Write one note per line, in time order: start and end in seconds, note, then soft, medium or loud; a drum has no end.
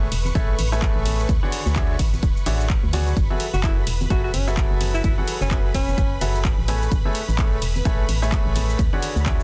0.00 3.15 B4 medium
0.00 3.18 C#6 medium
0.12 0.31 E1 loud
0.12 open hi-hat loud
0.12 ride medium
0.12 tambourine medium
0.12 cabasa medium
0.25 tambourine medium
0.25 high conga medium
0.25 cabasa soft
0.35 0.55 A1 loud
0.35 0.52 A3 medium
0.35 0.52 G#4 medium
0.35 0.52 A4 medium
0.35 0.52 B4 medium
0.35 0.52 C#5 medium
0.35 0.52 E5 loud
0.35 kick loud
0.35 ride medium
0.35 tambourine soft
0.35 cabasa soft
0.58 0.92 A1 medium
0.58 open hi-hat loud
0.58 ride medium
0.58 tambourine loud
0.58 high conga medium
0.58 cabasa medium
0.72 1.28 A3 loud
0.72 1.28 G#4 medium
0.72 1.28 A4 medium
0.72 1.28 B4 medium
0.72 1.28 C#5 medium
0.72 1.28 E5 loud
0.72 tambourine medium
0.72 cabasa soft
0.81 kick loud
0.81 clap loud
0.81 ride medium
0.81 tambourine soft
0.81 cabasa soft
0.96 1.26 A1 medium
1.06 open hi-hat loud
1.06 ride medium
1.06 tambourine medium
1.06 high conga medium
1.06 cabasa medium
1.19 tambourine medium
1.19 cabasa soft
1.29 1.40 D2 loud
1.29 kick loud
1.29 ride medium
1.29 tambourine soft
1.29 cabasa soft
1.43 1.74 D3 medium
1.43 1.74 F#4 medium
1.43 1.74 G#4 medium
1.43 1.74 C#5 medium
1.43 1.74 D5 medium
1.43 1.74 F#5 medium
1.43 high conga medium
1.52 open hi-hat loud
1.52 ride medium
1.52 tambourine medium
1.52 cabasa medium
1.66 1.96 D2 loud
1.66 tambourine medium
1.66 cabasa soft
1.76 1.93 D3 loud
1.76 1.93 F#4 medium
1.76 1.93 G#4 medium
1.76 1.93 C#5 medium
1.76 1.93 D5 medium
1.76 1.93 E5 loud
1.76 kick loud
1.76 clap loud
1.76 ride medium
1.76 tambourine soft
1.76 high conga medium
1.76 cabasa soft
1.99 2.19 A1 loud
1.99 kick medium
1.99 open hi-hat loud
1.99 ride medium
1.99 tambourine medium
1.99 cabasa medium
2.12 tambourine medium
2.12 high conga medium
2.12 cabasa soft
2.23 2.34 D1 medium
2.23 kick loud
2.23 ride medium
2.23 tambourine soft
2.23 cabasa soft
2.37 cabasa soft
2.46 2.79 A1 loud
2.46 2.63 D3 medium
2.46 2.63 F#4 medium
2.46 2.63 G#4 medium
2.46 2.63 C#5 medium
2.46 2.63 D5 medium
2.46 2.63 E5 loud
2.46 open hi-hat loud
2.46 ride medium
2.46 tambourine loud
2.46 high conga medium
2.46 cabasa medium
2.59 tambourine soft
2.59 cabasa soft
2.70 kick loud
2.70 clap loud
2.70 ride medium
2.70 cabasa soft
2.83 3.13 D2 loud
2.93 3.10 F#3 medium
2.93 3.10 F#4 medium
2.93 3.10 G#4 medium
2.93 3.10 C#5 medium
2.93 3.10 D5 medium
2.93 3.10 G#5 medium
2.93 open hi-hat loud
2.93 ride medium
2.93 tambourine medium
2.93 high conga loud
2.93 cabasa medium
3.07 tambourine medium
3.07 cabasa soft
3.16 3.28 F#1 loud
3.16 9.43 B4 medium
3.16 9.43 B5 medium
3.16 kick loud
3.16 ride medium
3.16 tambourine soft
3.16 cabasa soft
3.30 3.44 F#3 medium
3.30 3.44 F#4 medium
3.30 3.44 G#4 medium
3.30 3.44 A4 medium
3.30 3.44 B4 medium
3.30 3.44 E5 medium
3.30 high conga medium
3.40 open hi-hat loud
3.40 ride medium
3.40 tambourine medium
3.40 cabasa medium
3.54 3.84 F#1 loud
3.54 3.61 F#4 medium
3.54 tambourine medium
3.54 cabasa soft
3.63 3.80 F#3 medium
3.63 3.77 E4 medium
3.63 3.80 F#4 medium
3.63 3.80 G#4 medium
3.63 3.80 A4 medium
3.63 3.80 B4 medium
3.63 3.80 E5 medium
3.63 kick loud
3.63 clap loud
3.63 ride medium
3.63 tambourine soft
3.63 high conga medium
3.63 cabasa soft
3.87 4.06 E1 loud
3.87 open hi-hat loud
3.87 ride medium
3.87 tambourine loud
3.87 cabasa medium
4.01 tambourine medium
4.01 high conga loud
4.01 cabasa soft
4.10 4.30 F#1 loud
4.10 4.27 F#3 loud
4.10 4.19 F#4 medium
4.10 4.27 F#4 medium
4.10 4.27 G#4 medium
4.10 4.27 A4 medium
4.10 4.27 B4 medium
4.10 4.27 E5 loud
4.10 kick loud
4.10 ride medium
4.10 tambourine soft
4.10 cabasa soft
4.24 4.30 F#4 medium
4.34 4.67 F#1 medium
4.34 4.47 C#4 medium
4.34 open hi-hat loud
4.34 ride medium
4.34 tambourine medium
4.34 high conga medium
4.34 cabasa medium
4.47 5.15 F#3 loud
4.47 5.15 F#4 medium
4.47 5.14 G#4 medium
4.47 5.14 A4 medium
4.47 5.15 B4 medium
4.47 5.14 E5 loud
4.47 tambourine medium
4.47 cabasa soft
4.57 kick loud
4.57 clap loud
4.57 ride medium
4.57 cabasa soft
4.71 5.01 F#1 loud
4.81 open hi-hat loud
4.81 ride medium
4.81 tambourine medium
4.81 high conga medium
4.81 cabasa medium
4.94 5.01 E4 medium
4.94 tambourine medium
4.94 cabasa soft
5.04 5.15 F#1 loud
5.04 5.13 E4 medium
5.04 kick loud
5.04 ride medium
5.04 tambourine soft
5.04 cabasa soft
5.18 5.49 F#3 medium
5.18 5.49 F#4 medium
5.18 5.49 G#4 medium
5.18 5.49 A4 medium
5.18 5.49 B4 medium
5.18 5.49 F#5 medium
5.18 high conga medium
5.28 open hi-hat loud
5.28 ride medium
5.28 tambourine medium
5.28 cabasa medium
5.41 5.71 F#1 loud
5.41 5.48 C#4 medium
5.41 tambourine medium
5.41 cabasa soft
5.51 5.68 F#3 loud
5.51 5.60 C#4 medium
5.51 5.68 F#4 medium
5.51 5.68 G#4 medium
5.51 5.68 A4 medium
5.51 5.68 B4 medium
5.51 5.68 E5 loud
5.51 kick loud
5.51 clap loud
5.51 ride medium
5.51 tambourine soft
5.51 high conga medium
5.51 cabasa soft
5.74 5.94 E1 loud
5.74 6.21 C#4 medium
5.74 kick medium
5.74 open hi-hat loud
5.74 ride medium
5.74 tambourine medium
5.74 cabasa medium
5.88 tambourine medium
5.88 high conga loud
5.88 cabasa soft
5.98 6.17 F#1 loud
5.98 kick loud
5.98 ride medium
5.98 tambourine soft
5.98 cabasa soft
6.21 6.54 F#1 medium
6.21 6.38 F#3 medium
6.21 6.38 F#4 medium
6.21 6.38 G#4 medium
6.21 6.38 A4 medium
6.21 6.38 B4 medium
6.21 6.38 E5 loud
6.21 open hi-hat loud
6.21 ride medium
6.21 tambourine medium
6.21 high conga medium
6.21 cabasa medium
6.35 tambourine medium
6.35 cabasa soft
6.45 kick loud
6.45 clap loud
6.45 ride medium
6.45 cabasa soft
6.58 6.88 A1 medium
6.68 6.85 A3 medium
6.68 6.85 G#4 medium
6.68 6.85 A4 medium
6.68 6.85 B4 medium
6.68 6.85 C#5 medium
6.68 6.85 G#5 medium
6.68 open hi-hat loud
6.68 ride medium
6.68 tambourine loud
6.68 high conga medium
6.68 cabasa medium
6.82 tambourine medium
6.82 cabasa soft
6.92 7.03 A1 medium
6.92 kick loud
6.92 ride medium
6.92 tambourine soft
6.92 cabasa soft
7.05 7.19 A3 medium
7.05 7.19 G#4 medium
7.05 7.19 A4 medium
7.05 7.19 B4 medium
7.05 7.19 C#5 medium
7.05 7.19 E5 medium
7.05 high conga loud
7.15 open hi-hat loud
7.15 ride medium
7.15 tambourine medium
7.15 cabasa medium
7.28 7.59 A1 loud
7.28 tambourine medium
7.28 cabasa soft
7.38 7.55 A3 medium
7.38 7.55 G#4 medium
7.38 7.55 A4 medium
7.38 7.55 B4 medium
7.38 7.55 C#5 medium
7.38 7.55 E5 medium
7.38 kick loud
7.38 clap loud
7.38 ride medium
7.38 tambourine soft
7.38 high conga medium
7.38 cabasa soft
7.62 7.81 E1 loud
7.62 open hi-hat loud
7.62 ride medium
7.62 tambourine medium
7.62 cabasa medium
7.76 tambourine medium
7.76 high conga medium
7.76 cabasa soft
7.85 8.05 A1 loud
7.85 8.02 A3 loud
7.85 8.02 G#4 medium
7.85 8.02 A4 medium
7.85 8.02 B4 medium
7.85 8.02 C#5 medium
7.85 8.02 E5 loud
7.85 kick loud
7.85 ride medium
7.85 cabasa soft
8.09 8.41 A1 medium
8.09 open hi-hat loud
8.09 ride medium
8.09 tambourine medium
8.09 high conga medium
8.09 cabasa medium
8.22 8.78 A3 loud
8.22 8.78 G#4 medium
8.22 8.78 A4 medium
8.22 8.78 B4 medium
8.22 8.78 C#5 medium
8.22 8.78 E5 loud
8.22 tambourine medium
8.22 cabasa soft
8.32 kick loud
8.32 clap loud
8.32 ride medium
8.32 cabasa soft
8.46 8.76 A1 medium
8.55 open hi-hat loud
8.55 ride medium
8.55 tambourine medium
8.55 high conga medium
8.55 cabasa medium
8.69 tambourine soft
8.69 cabasa soft
8.78 8.90 D2 loud
8.78 kick loud
8.78 ride medium
8.78 tambourine soft
8.78 cabasa soft
8.93 9.24 D3 medium
8.93 9.24 F#4 medium
8.93 9.24 G#4 medium
8.93 9.24 C#5 medium
8.93 9.24 D5 medium
8.93 9.24 F#5 medium
8.93 high conga medium
9.02 open hi-hat loud
9.02 ride medium
9.02 tambourine medium
9.02 cabasa medium
9.16 9.43 D2 loud
9.16 tambourine medium
9.16 cabasa soft
9.26 9.43 D3 loud
9.26 9.43 F#4 medium
9.26 9.43 G#4 medium
9.26 9.43 C#5 medium
9.26 9.43 D5 medium
9.26 9.43 E5 loud
9.26 kick loud
9.26 clap loud
9.26 ride medium
9.26 tambourine soft
9.26 high conga medium
9.26 cabasa soft
9.40 cabasa soft